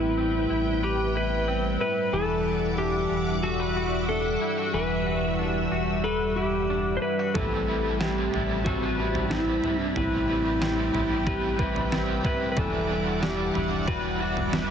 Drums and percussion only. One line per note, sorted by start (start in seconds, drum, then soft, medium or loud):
7.35 kick medium
7.35 floor tom medium
8.01 snare medium
8.34 floor tom medium
8.66 kick medium
8.66 floor tom medium
9.15 floor tom medium
9.31 snare medium
9.64 floor tom medium
9.96 floor tom medium
10.62 snare loud
10.95 floor tom medium
11.27 kick medium
11.27 floor tom medium
11.59 kick medium
11.76 floor tom medium
11.92 snare medium
12.24 kick medium
12.24 floor tom medium
12.57 kick loud
12.57 floor tom medium
13.23 snare medium
13.55 floor tom medium
13.88 kick medium
13.88 floor tom medium
14.37 floor tom medium
14.53 snare loud